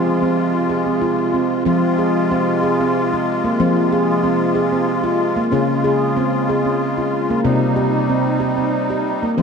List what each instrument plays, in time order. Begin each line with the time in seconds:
Already playing: accordion C3 G#3 F4, handpan F3 G#4
0.22 handpan C4
0.69 handpan G#4
0.86 handpan C4
1.01 handpan F4
1.34 handpan C4
1.65 accordion C3 G#3 F4, handpan F3 C4
1.98 handpan G#4
2.31 handpan C4
2.63 handpan G#4
2.81 handpan C4
3.13 handpan F4
3.44 handpan A#3
3.60 handpan F3 C4
3.92 handpan G#4
4.24 handpan C4
4.55 handpan G#4
4.72 handpan C4
5.03 handpan F4
5.36 handpan A#3
5.52 handpan C#3 C#4, accordion C#3
5.84 handpan G#4
6.17 handpan C4
6.49 handpan G#4
6.65 handpan C#4
6.98 handpan F4
7.30 handpan A#3
7.43 accordion C3 G3 D#4, handpan C3 C4
7.76 handpan G4
8.09 handpan C4
8.40 handpan G4
8.57 handpan C4
8.90 handpan G4
9.23 handpan A#3
9.38 accordion C3 G#3, handpan F3 C4